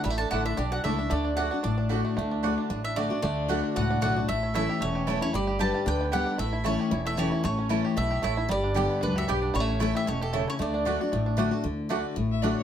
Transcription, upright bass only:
X:1
M:4/4
L:1/8
Q:"Swing" 1/4=228
K:D
V:1 name="Upright bass" clef=bass
A,,,2 A,,,2 B,,,2 C,,2 | D,,4 A,,,4 | D,,4 A,,,4 | D,,4 C,,2 B,,,2 |
A,,,4 E,,,4 | G,,,4 D,,4 | A,,,4 E,,,4 | A,,,4 B,,,2 A,,,2 |
G,,,4 C,,2 B,,,2 | A,,,4 E,,,4 | D,,4 A,,,4 | D,,4 A,,,4 |]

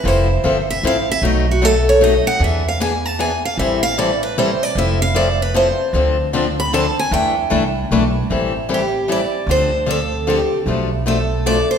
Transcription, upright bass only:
X:1
M:3/4
L:1/8
Q:"Swing" 1/4=153
K:Am
V:1 name="Upright bass" clef=bass
F,,,2 G,,,2 A,,,2 | B,,,6 | E,,6 | A,,,6 |
F,,,6 | D,,6 | E,,2 C,,2 B,,,2 | A,,,6 |
D,,6 | B,,,6 |]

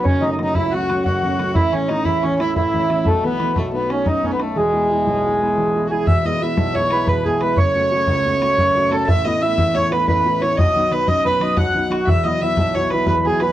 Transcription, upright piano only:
X:1
M:9/8
L:1/8
Q:3/8=120
K:E
V:1 name="Upright piano"
[F,,,F,,] [F,A,C] [F,A,C] C,, [F,A,C] [F,A,C] [F,,,F,,] [F,A,C] [F,A,C] | [A,,,A,,] [E,A,C] [E,A,C] E,, [E,A,C] [E,A,C] [A,,,A,,] [E,A,C] [E,A,C] | [B,,,B,,] [E,A,B,] [E,A,B,] [B,,,B,,] [A,B,D] [A,B,D] F,, [A,B,D] [A,B,D] | [E,,,E,,] [G,B,E] [G,B,E] B,,, [G,B,E] [G,B,E] [E,,,E,,] [G,B,E] [G,B,E] |
[E,,,E,,] [G,B,E] [G,B,E] B,,, [G,B,E] [G,B,E] [E,,,E,,] [G,B,E] [G,B,E] | [F,,,F,,] [A,CF] [A,CF] C,, [A,CF] [A,CF] [F,,,F,,] [A,CF] [A,CF] | [A,,,A,,] [A,B,E] [A,B,E] E,, [A,B,E] [A,B,E] [A,,,A,,] [A,B,E] [A,B,E] | [B,,,B,,] [F,B,D] [F,B,D] F,, [F,B,D] [F,B,D] [B,,,B,,] [F,B,D] [F,B,D] |
[E,,,E,,] [F,B,E] [F,B,E] B,,, [F,B,E] [F,B,E] [E,,,E,,] [F,B,E] [F,B,E] |]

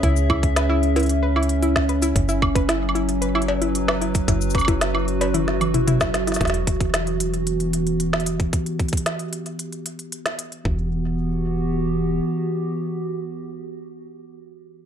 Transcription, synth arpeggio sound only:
X:1
M:4/4
L:1/16
Q:1/4=113
K:Edor
V:1 name="Synth arpeggio sound"
E z E z B E z E z B E z E z B E | z E z B E z E z B E z E z B E z | E z B E z E z B E z E, E E E z E | z16 |
z16 | z16 | z16 |]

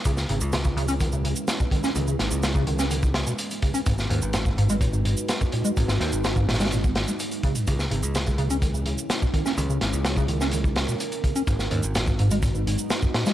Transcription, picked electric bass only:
X:1
M:4/4
L:1/16
Q:1/4=126
K:C#dor
V:1 name="Picked electric bass" clef=bass
C,,2 G,,, C,,8 z4 z | C,,2 G,,, C,,8 z4 z | G,,,2 D,, G,,,8 z4 z | G,,,2 D,, G,,,8 z4 z |
C,,2 G,,, C,,8 z4 z | C,,2 G,,, C,,8 z4 z | G,,,2 D,, G,,,8 z4 z |]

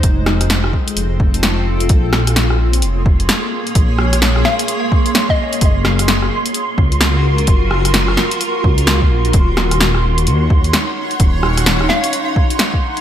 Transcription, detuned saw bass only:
X:1
M:4/4
L:1/8
Q:"Swing 16ths" 1/4=129
K:Bbm
V:1 name="Detuned saw bass" clef=bass
F,,,3 z F,,,4 | B,,,4 F,,,2 z2 | B,,,3 z4 z | G,,,3 z2 D,,3 |
G,,,3 z2 D,,2 B,,, | E,,,4 E,,2 z2 | E,,,3 z4 z |]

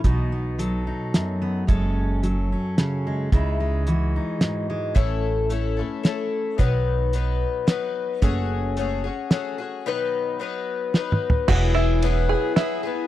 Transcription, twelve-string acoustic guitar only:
X:1
M:3/4
L:1/8
Q:1/4=110
K:E
V:1 name="Twelve-string acoustic guitar"
z6 | z6 | z6 | [A,,E,A,CEA]2 [A,CEA] [A,CEA] [A,CEA]2 |
[B,,D,F,B,DB]2 [F,B,DB]2 [F,B,DB]2 | [F,A,CFG]2 [A,CFG] [CFG] [A,CFG] [CFG] | [B,,D,F,B,DB]2 [F,B,DB]2 [F,B,DB]2 | [E,F,B,EG]2 [F,B,EG]2 [F,B,EG] [B,EG] |]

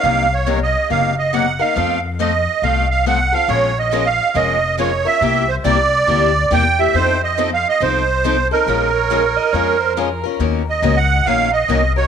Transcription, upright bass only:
X:1
M:4/4
L:1/8
Q:"Swing" 1/4=139
K:Bbm
V:1 name="Upright bass" clef=bass
C,,4 G,,,4 | F,,4 C,,4 | B,,,4 F,,,4 | C,,2 C,,2 =D,,2 =E,,2 |
F,,4 C,,4 | B,,,4 F,,4 | E,,2 D,,2 B,,,2 C,,2 |]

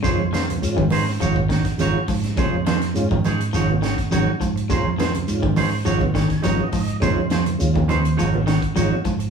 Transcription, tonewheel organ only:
X:1
M:4/4
L:1/8
Q:1/4=103
K:Bbm
V:1 name="Tonewheel organ"
z8 | z8 | z4 z a e2 | z8 |]
V:2 name="Tonewheel organ"
[E,A,DF] z [E,A,DF] z [E,A,DF] z [E,A,DF] z | [E,A,DF] z [E,A,DF] z [E,A,DF] z [E,A,DG] z | [E,A,DF] z [E,A,DF] z [E,A,DF] z [E,A,DF] z | [E,A,DF] z [E,A,DF] z [E,A,DF] z [E,A,DF] z |]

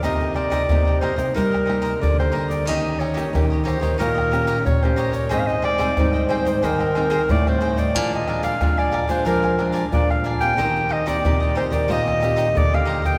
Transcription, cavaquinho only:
X:1
M:4/4
L:1/16
Q:1/4=91
K:Cm
V:1 name="Cavaquinho"
[EBce]2 [EBce] [EBce] z [Bce] [EBce] [Bce] [EBce] [Bce] [EBce] [EBce] z2 [EBce] [Bce] | [EG_de]2 [EGde] [EGde] z [Gde] [EGde] [Gde] [EGde] [Gde] [EGde] [EGde] z2 [EGde] [Gde] | [Aceg]2 [Aceg] [Aceg] z [ceg] [Aceg] [ceg] [Aceg] [ceg] [Aceg] [Aceg] z2 [Aceg] [ceg] | [DBda]2 [DBda] [DBda] z [Bda] [DBda] [Bda] [DBda] [Bda] [DBda] [DBda] z2 [DBda] [Bda] |
[EGce]2 [EGce] [EGce] z [Gce] [EGce] [Gce] [EGce] [Gce] [EGce] [EGce] z2 [EGce] [Gce] |]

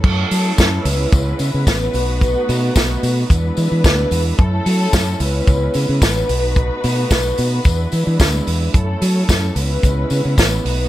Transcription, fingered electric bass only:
X:1
M:4/4
L:1/16
Q:1/4=110
K:F#m
V:1 name="Fingered electric bass" clef=bass
F,,2 F,2 F,,2 C,,2 C,,2 C, C, A,,,2 B,,,2- | B,,,2 B,,2 B,,,2 B,,2 E,,2 E, E, D,,2 E,,2 | F,,2 F,2 F,,2 C,,2 C,,2 C, C, A,,,2 B,,,2- | B,,,2 B,,2 B,,,2 B,,2 E,,2 E, E, D,,2 E,,2 |
F,,2 F,2 F,,2 C,,2 C,,2 C, C, A,,,2 B,,,2 |]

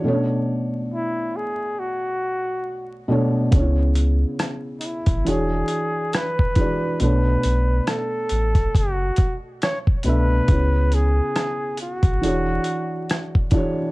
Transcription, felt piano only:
X:1
M:4/4
L:1/8
Q:"Swing 16ths" 1/4=69
K:Bdor
V:1 name="Felt piano"
[B,,A,CDc]3 z4 [B,,A,Dc] | [C,B,DEc]3 z [E,DFGc]2 z [E,DFGd] | [B,,A,Dc]3 z4 [B,,A,De] | [C,B,Ec]3 z [E,DFGc]2 z [E,DFGc] |]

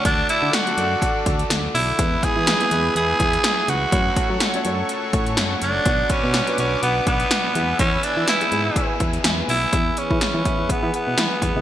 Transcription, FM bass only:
X:1
M:4/4
L:1/16
Q:"Swing 16ths" 1/4=124
K:Emix
V:1 name="FM bass" clef=bass
D,,2 z D, z2 F,,2 z2 D,,2 D,,2 B,,,2 | E,,2 z E,2 z E,,2 E,,2 E,,2 z2 C,,2 | F,,2 z F, z2 F,,2 z2 A,,2 F,,2 F,,,2 | B,,,2 z B,,2 z B,,,2 B,,,2 B,,,2 z2 E,,2 |
E,,2 z E, z2 G,,2 z2 E,,2 E,,2 B,,,2 | E,,2 z E, z E, z E,, E, E, z B,, E, z E,, C,, |]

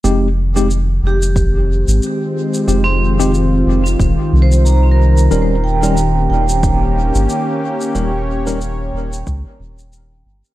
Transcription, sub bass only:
X:1
M:4/4
L:1/16
Q:"Swing 16ths" 1/4=91
K:Fm
V:1 name="Sub bass" clef=bass
F,,,6 F,,,4- F,,, A,,, z4 | F,,,6 F,,,2 E,,, z C,,6 | E,,,6 E,,,4- E,,, G,,, z4 | E,,,6 E,,,2 D,, z E,,,4 G,,, z |]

